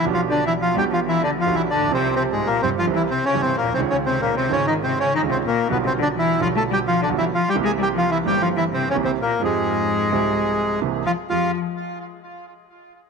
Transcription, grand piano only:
X:1
M:4/4
L:1/16
Q:1/4=128
K:Fm
V:1 name="Grand piano" clef=bass
[=B,,,=B,,F,=B,=DG]6 [B,,,B,,F,B,DG]6 [B,,,B,,F,B,DG]2 z/2 =A,,,/2 _B,,,/2 =B,,,/2 | [C,,C,F,G,CG]6 [G,,,G,,F,G,CG]2 [C,,C,=E,G,CG]2 z2 [G,,,G,,E,G,CG]2 z/2 B,,,/2 =B,,,/2 C,,/2 | [D,,D,E,A,DF]6 [A,,,A,,E,A,DF]6 [D,,D,E,A,DF]2 z2 | [=B,,,=B,,=D,G,=B,F]6 [B,,,B,,D,G,B,F]6 [B,,,B,,D,G,B,F]2 z2 |
[C,,C,=E,B,CG]6 [G,,,G,,E,B,CG]6 [C,,C,E,B,CG]2 z2 | [F,,F,A,CG]6 [C,,C,F,A,CG]6 [C,,C,=E,B,CG]2 z2 | [F,,A,FG]2 z12 z2 |]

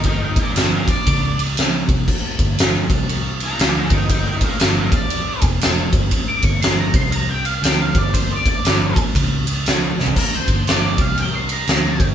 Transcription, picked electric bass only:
X:1
M:4/4
L:1/8
Q:"Swing" 1/4=119
K:Gm
V:1 name="Picked electric bass" clef=bass
G,,, B,,, G,,, B,,, ^C,,3 =C,, | z G,,,2 C,,3 D,, G,,,- | G,,, B,,, G,,, B,,,2 F,,,2 G,,, | z G,,,2 C,,3 D,, G,,,- |
G,,, B,,, G,,, B,,, ^C,,3 =C,, | z G,,,2 C,,3 D,, G,,, |]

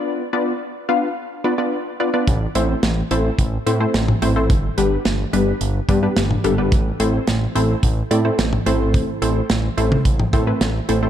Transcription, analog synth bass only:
X:1
M:4/4
L:1/8
Q:1/4=108
K:Am
V:1 name="Analog synth bass" clef=bass
z8 | A,,, A,,, A,,, A,,, A,,, A,, A,,, A,,, | G,,, G,,, G,,, G,,, G,,, G,, G,,, G,,, | A,,, A,,, A,,, A,,, A,,, A,, A,,, A,,,- |
A,,, A,,, A,,, A,,, A,,, A,, A,,, A,,, |]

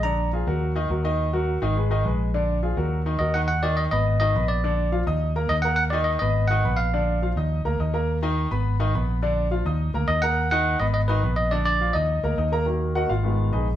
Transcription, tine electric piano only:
X:1
M:4/4
L:1/8
Q:1/4=209
K:Ebm
V:1 name="Tine electric piano"
b2 z6 | z8 | z6 e g | g =d e e2 e2 d- |
=d3 z3 e g | g =d e e2 g2 f- | f3 z4 z | z8 |
z6 e g- | g g2 e e c2 e | =d d2 e4 z | z8 |]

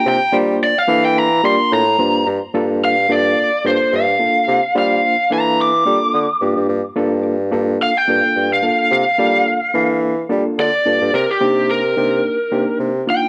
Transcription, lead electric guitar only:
X:1
M:4/4
L:1/16
Q:"Swing 16ths" 1/4=108
K:Gdor
V:1 name="Lead electric guitar"
g2 z2 d f2 g b2 c'2 b4 | z4 f2 d4 c2 f4- | f2 f4 b2 d'8- | d'4 z4 f g4 f3 |
f8 z4 d4 | B G3 B8 z2 g2 |]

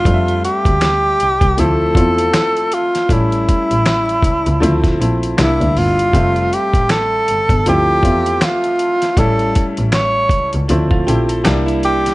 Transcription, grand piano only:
X:1
M:4/4
L:1/8
Q:"Swing 16ths" 1/4=79
K:F
V:1 name="Grand piano"
[G,A,CDe]3 z [F,A,CE] [A,CEF]2 z | [G,A,^CE]3 z [F,A,=CE] [F,A,CE] [G,B,DE]2 | [G,A,Ce]3 z [F,A,CE] [A,CFe]2 z | [G,A,^CE]3 z [F,A,=CE] [F,A,CE] [G,B,DE]2 |]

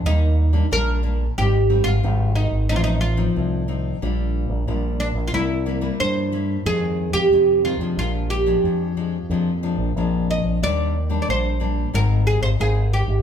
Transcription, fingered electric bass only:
X:1
M:4/4
L:1/16
Q:1/4=91
K:Eb
V:1 name="Fingered electric bass" clef=bass
E,,4 B,,,4 A,,,3 A,,, A,,,3 A,,, | =A,,,4 C,,4 B,,,3 B,,, B,,,3 B,,, | C,,4 G,,4 F,,3 F,, F,,3 F,, | B,,,4 F,,4 F,,3 B,,, B,,,3 B,,, |
E,,4 B,,,4 A,,,3 A,,, A,,,3 A,,, |]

